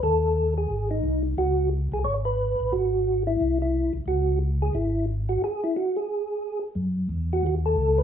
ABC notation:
X:1
M:4/4
L:1/8
Q:"Swing" 1/4=179
K:C#m
V:1 name="Tonewheel organ"
A3 G2 D2 z | F2 z G c B3 | F3 E2 E2 z | F2 z G E2 z F |
G E F G4 z | [K:F#dor] z3 F F A2 B |]
V:2 name="Tonewheel organ" clef=bass
D,,4 G,,,2 ^B,,,2 | C,,3 ^B,,, G,,,3 A,,, | G,,,4 ^B,,,3 B,,, | C,,4 G,,,4 |
z8 | [K:F#dor] F,,2 E,,2 D,,2 C,,2 |]